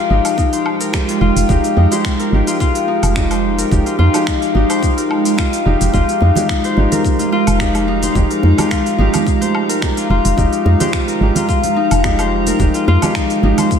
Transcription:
Already playing: felt piano F3 G#3 D#4 G4, ambient pad G#3 D#4 F5 G5, harp F4 A#4 C5
0.08 fm bass G#1, felt piano F3 G#3 D#4, harp D#4
0.12 felt piano G4
0.25 open hi-hat, low woodblock, shaker
0.38 harp D#4, kick, shaker
0.53 harp C5, open hi-hat, shaker
0.66 low woodblock
0.81 harp A#4, open hi-hat, shaker
0.92 felt piano F3 G#3 D#4 G4, finger snap, kick, shaker
1.08 harp F4, open hi-hat, shaker
1.21 fm bass F1, harp F4
1.36 fm bass F1, open hi-hat, shaker
1.48 fm bass F1, felt piano F3 G#3 D#4 G4, harp D#4, kick, shaker
1.64 open hi-hat, shaker
1.77 fm bass F2, harp D#4
1.91 felt piano F3 G#3 D#4 G4, harp C5, open hi-hat, shaker
2.05 finger snap, kick, shaker
2.20 harp A#4, open hi-hat, shaker
2.30 fm bass G#1, felt piano F3 G#3 D#4 G4
2.47 harp F4, open hi-hat, shaker
2.60 harp F4, kick, shaker
2.75 open hi-hat, shaker
2.88 harp D#4
3.03 fm bass F1, open hi-hat, low woodblock, shaker
3.15 felt piano F3 G#3 D#4 G4, harp D#4, finger snap, kick, shaker
3.31 harp C5, open hi-hat, low woodblock, shaker
3.58 harp A#4, open hi-hat, shaker
3.71 fm bass F1, felt piano F3 G#3 D#4 G4, kick, shaker
3.86 harp F4, open hi-hat, shaker
3.99 fm bass F2, harp F4
4.13 felt piano F3 G#3 D#4 G4, open hi-hat, low woodblock, shaker
4.27 harp D#4, finger snap, kick, shaker
4.42 open hi-hat, shaker
4.53 fm bass G#1, felt piano F3 G#3 D#4 G4, harp D#4
4.69 harp C5, open hi-hat, low woodblock, shaker
4.83 kick, shaker
4.97 harp A#4, open hi-hat, shaker
5.11 low woodblock
5.25 harp F4, open hi-hat, shaker
5.38 harp F4, finger snap, kick, shaker
5.53 open hi-hat, shaker
5.65 fm bass F1, felt piano F3 G#3 D#4 G4, harp D#4
5.81 fm bass F1, open hi-hat, shaker
5.93 fm bass F1, felt piano F3 G#3 D#4 G4, harp F4, ambient pad A#5, kick, shaker
6.09 open hi-hat, shaker
6.21 fm bass F2, harp D#4, muted conga
6.35 felt piano F3 G#3 D#4 G4, open hi-hat, low conga, shaker
6.49 harp D#4, finger snap, kick, shaker
6.64 harp C5, open hi-hat, shaker
6.75 fm bass G#1, felt piano F3 G#3 D#4, high conga
6.79 felt piano G4
6.92 harp A#4, open hi-hat, low conga, shaker
7.04 kick, shaker
7.19 harp F4, open hi-hat, high conga, shaker
7.32 harp F4
7.47 fm bass F1, open hi-hat, low woodblock, shaker
7.59 felt piano F3 G#3 D#4 G4, harp D#4, finger snap, kick, shaker
7.75 open hi-hat, high conga, low woodblock, shaker
7.88 harp D#4
8.03 harp C5, open hi-hat, high conga, shaker
8.14 fm bass F1, felt piano F3 G#3 D#4 G4, kick, shaker
8.30 harp A#4, open hi-hat, shaker
8.43 fm bass F2, muted conga
8.57 felt piano F3 G#3 D#4 G4, harp F4, open hi-hat, low conga, low woodblock, shaker
8.71 harp F4, finger snap, kick, shaker
8.86 open hi-hat, shaker
8.97 fm bass G#1, felt piano F3 G#3 D#4 G4, harp D#4, high conga
9.14 open hi-hat, low conga, low woodblock, shaker
9.26 harp D#4, kick, shaker
9.41 harp C5, open hi-hat, high conga, shaker
9.55 low woodblock
9.69 harp A#4, open hi-hat, shaker
9.81 felt piano F3 G#3 D#4 G4, finger snap, kick, shaker
9.97 harp F4, open hi-hat, shaker
10.10 fm bass F1, harp F4
10.25 fm bass F1, open hi-hat, shaker
10.36 fm bass F1, felt piano F3 G#3 D#4 G4, harp D#4, kick, shaker
10.53 open hi-hat, shaker
10.65 fm bass F2, harp D#4, muted conga
10.79 felt piano F3 G#3 D#4 G4, harp C5, open hi-hat, low conga, shaker
10.93 finger snap, kick, shaker
11.08 harp A#4, open hi-hat, shaker
11.19 fm bass G#1, felt piano F3 G#3 D#4 G4, high conga
11.35 harp F4, open hi-hat, low conga, shaker
11.49 harp F4, kick, shaker
11.64 open hi-hat, high conga, shaker
11.76 harp D#4
11.91 fm bass F1, open hi-hat, low woodblock, shaker
12.02 felt piano F3 G#3 D#4 G4, harp D#4, finger snap, kick, shaker
12.19 harp C5, open hi-hat, high conga, low woodblock, shaker
12.47 harp A#4, open hi-hat, high conga, shaker
12.58 fm bass F1, felt piano F3 G#3 D#4 G4, kick, shaker
12.74 harp F4, open hi-hat, shaker
12.88 fm bass F2, harp F4, muted conga
13.01 felt piano F3 G#3 D#4 G4, open hi-hat, low conga, low woodblock, shaker
13.15 harp D#4, finger snap, kick, shaker
13.30 open hi-hat, shaker
13.41 fm bass G#1, felt piano F3 G#3 D#4, harp D#4, high conga
13.45 felt piano G4
13.58 harp C5, open hi-hat, low conga, low woodblock, shaker
13.71 kick, shaker

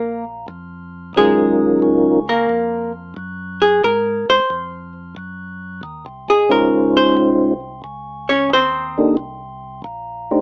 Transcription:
Already playing: tonewheel organ A#1, hollow-body jazz guitar A#3 A#4
0.48 tonewheel organ F2
1.15 tonewheel organ D#2 F#3 C#4 D#4 F4 A#4, hollow-body jazz guitar G#3 G#4
1.82 tonewheel organ C#2
2.29 hollow-body jazz guitar A#3 A#4
2.49 tonewheel organ F2
3.17 tonewheel organ F#2
3.62 hollow-body jazz guitar G#4
3.84 tonewheel organ G#2, hollow-body jazz guitar A#4
4.29 tonewheel organ G#2, hollow-body jazz guitar C5
4.50 tonewheel organ F2
5.16 tonewheel organ F#2
5.83 tonewheel organ D#2
6.06 tonewheel organ C2
6.29 tonewheel organ G#1, hollow-body jazz guitar G#4
6.49 tonewheel organ C#2 G#3 C#4 D#4 F4 C5, hollow-body jazz guitar A#4
6.97 hollow-body jazz guitar C5
7.17 tonewheel organ C2
7.84 tonewheel organ C#2
8.29 hollow-body jazz guitar C#4 C#5
8.50 tonewheel organ D#2, hollow-body jazz guitar C5
8.54 hollow-body jazz guitar C4
8.98 tonewheel organ A#3 D4 D#4 G4 A4
9.17 tonewheel organ C2
9.84 tonewheel organ A#1
10.31 tonewheel organ A3 D4 D#4 G4 C5

